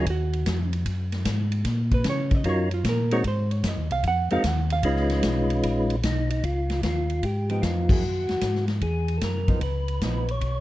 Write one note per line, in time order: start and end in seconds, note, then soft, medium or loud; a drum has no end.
0.06 0.45 D#2 medium
0.06 0.71 F#4 medium
0.06 kick soft
0.06 ride medium
0.33 ride medium
0.46 0.85 F2 medium
0.46 kick soft
0.46 snare medium
0.46 hi-hat pedal medium
0.46 ride medium
0.73 ride medium
0.86 1.25 F#2 medium
0.86 kick soft
0.86 ride medium
1.12 snare soft
1.12 ride medium
1.25 1.64 G#2 loud
1.25 kick soft
1.25 snare medium
1.25 hi-hat pedal medium
1.25 ride medium
1.52 ride medium
1.65 2.04 A#2 medium
1.65 kick soft
1.65 snare soft
1.65 ride medium
1.91 2.06 B4 loud
1.91 kick medium
1.91 ride medium
2.04 2.44 C#3 medium
2.04 kick soft
2.04 snare medium
2.04 hi-hat pedal medium
2.04 ride medium
2.10 2.35 C#5 loud
2.31 2.46 D#5 loud
2.31 kick medium
2.31 ride medium
2.44 2.84 F#2 loud
2.44 2.69 F#3 medium
2.44 2.69 C#4 medium
2.44 2.69 D#4 medium
2.44 2.69 F4 medium
2.44 2.69 A#4 medium
2.44 kick soft
2.44 ride medium
2.49 2.73 C#5 medium
2.71 2.86 F4 medium
2.71 ride medium
2.84 3.23 A#2 loud
2.84 kick soft
2.84 snare medium
2.84 hi-hat pedal medium
2.84 ride medium
2.89 3.13 A#4 medium
3.11 3.24 G#3 medium
3.11 3.24 C4 medium
3.11 3.24 D#4 medium
3.11 3.24 F#4 medium
3.11 3.24 A#4 loud
3.11 3.25 C#5 loud
3.11 ride medium
3.24 3.63 G#2 medium
3.24 3.52 C5 loud
3.24 kick soft
3.24 ride medium
3.51 3.67 C#5 loud
3.51 ride medium
3.64 3.77 F#2 loud
3.64 3.92 D#5 loud
3.64 kick soft
3.64 snare medium
3.64 hi-hat pedal medium
3.64 ride medium
3.77 3.91 D#2 medium
3.91 4.04 C2 medium
3.91 4.05 F5 loud
3.91 ride medium
4.03 4.29 F2 medium
4.03 kick soft
4.03 ride medium
4.08 4.32 F#5 loud
4.30 4.38 F2 soft
4.30 4.43 G#3 medium
4.30 4.43 C4 medium
4.30 4.43 D#4 medium
4.30 4.43 F#4 medium
4.30 4.43 A#4 loud
4.30 4.48 F5 loud
4.30 ride medium
4.44 4.83 D#2 loud
4.44 kick soft
4.44 snare medium
4.44 hi-hat pedal medium
4.44 ride medium
4.48 4.72 F#5 loud
4.70 5.09 F5 loud
4.70 ride medium
4.83 5.22 C#2 loud
4.83 5.96 G#3 medium
4.83 5.96 C#4 medium
4.83 5.96 D#4 medium
4.83 5.96 F4 medium
4.83 5.96 B4 medium
4.83 kick soft
4.83 ride medium
4.96 snare soft
5.10 snare medium
5.10 ride medium
5.23 5.62 B1 loud
5.23 kick soft
5.23 snare medium
5.23 hi-hat pedal medium
5.23 ride medium
5.50 ride medium
5.63 6.02 A#1 medium
5.63 kick soft
5.63 ride medium
5.90 ride medium
6.03 6.42 B1 loud
6.03 6.30 D#4 medium
6.03 kick soft
6.03 snare medium
6.03 hi-hat pedal medium
6.03 ride medium
6.30 6.44 D#4 medium
6.30 ride medium
6.44 6.82 C#2 medium
6.44 6.81 F4 medium
6.44 kick soft
6.44 ride medium
6.70 snare medium
6.70 ride soft
6.83 7.22 D#2 medium
6.83 7.25 F4 medium
6.83 kick soft
6.83 snare medium
6.83 hi-hat pedal medium
6.83 ride medium
7.10 ride soft
7.23 7.62 G#2 medium
7.23 7.50 G4 medium
7.23 kick soft
7.23 ride medium
7.50 7.87 F3 medium
7.50 7.87 B3 medium
7.50 7.88 D#4 medium
7.50 7.64 G4 medium
7.50 ride soft
7.62 8.02 F2 medium
7.62 7.90 F4 medium
7.62 kick soft
7.62 snare medium
7.62 hi-hat pedal medium
7.62 ride medium
7.89 8.02 F#3 medium
7.89 8.02 A#3 medium
7.89 8.02 E4 medium
7.89 8.65 F#4 loud
7.89 8.02 G#4 medium
7.89 kick medium
7.89 crash medium
8.02 8.27 F#2 medium
8.29 8.37 F#2 soft
8.29 snare soft
8.29 ride soft
8.41 8.81 G#2 medium
8.41 kick soft
8.41 snare medium
8.41 hi-hat pedal medium
8.41 ride medium
8.55 snare soft
8.68 snare soft
8.68 ride soft
8.81 9.20 E2 medium
8.81 9.19 G#4 medium
8.81 kick soft
8.81 ride medium
9.08 ride soft
9.18 9.22 A4 medium
9.18 hi-hat pedal medium
9.18 ride medium
9.22 9.61 F#2 medium
9.22 9.60 A#4 loud
9.22 kick soft
9.22 snare medium
9.48 9.61 F3 medium
9.48 9.61 B3 medium
9.48 9.61 D#4 medium
9.48 kick medium
9.48 ride medium
9.61 10.00 C#2 medium
9.61 10.31 B4 loud
9.61 kick soft
9.61 ride medium
9.88 ride soft
10.01 10.40 A#1 medium
10.01 10.26 F3 medium
10.01 10.26 B3 medium
10.01 10.27 D#4 medium
10.01 kick soft
10.01 snare medium
10.01 hi-hat pedal medium
10.01 ride medium
10.28 10.60 C#5 loud
10.28 ride soft
10.41 10.60 B1 medium
10.41 kick soft
10.41 ride medium